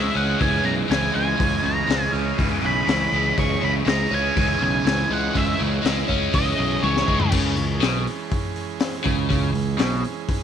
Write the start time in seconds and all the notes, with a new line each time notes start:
Already playing: C#3 E3 G#3 C#4 E4 G#4 D#5 E5
0.15 C#2 C#4 F#5
0.39 C#2 E3 G#5, kick, open hi-hat
0.63 B1 C#3 A#5
0.88 C#2 E3 G#5, snare, open hi-hat
1.12 C#2 G#3 G#5
1.36 C#2 C#3, kick
1.40 open hi-hat
1.62 C#2 C#3 A#5
1.87 C#2 G#3, snare, open hi-hat
2.12 C#2 C#4
2.38 C#2 E3, kick, open hi-hat
2.62 B1 C#3
2.66 B5
2.86 C#2 E3, snare, open hi-hat
3.12 C#2 G#3
3.37 C#2 C#3 C#6, kick, open hi-hat
3.61 C#2 C#3 B5
3.85 C#2 G#3 A#5, snare, open hi-hat
4.11 C#2 C#4 G#5
4.36 C#2 E3, kick, open hi-hat
4.59 B1 C#3
4.63 G#5
4.84 C#2 E3, snare, open hi-hat
5.10 C#2 G#3 F#5
5.33 C#2 C#3 E5, kick, open hi-hat
5.59 C#2 C#3
5.82 C#2 G#3, snare, open hi-hat
6.08 C#2 C#4, kick
6.33 C#2 E3 D#5, kick, open hi-hat
6.57 B1 C#3
6.83 C#2 E3 C#5, high tom
6.97 snare
7.08 C#2 G#3, kick
7.20 floor tom
7.32 C#2 C#3 E3 G#3 C#4 G#4, kick, crash
7.57 C#2 C#3, open hi-hat
7.81 B1 B2, snare, open hi-hat
8.07 open hi-hat
8.31 kick, open hi-hat
8.56 open hi-hat
8.80 snare, open hi-hat
9.04 C#2 C#3, kick, open hi-hat
9.29 C#2 C#3, kick, open hi-hat
9.53 C#2 C#3, open hi-hat
9.78 B1 B2, snare, open hi-hat
10.04 open hi-hat
10.29 kick, open hi-hat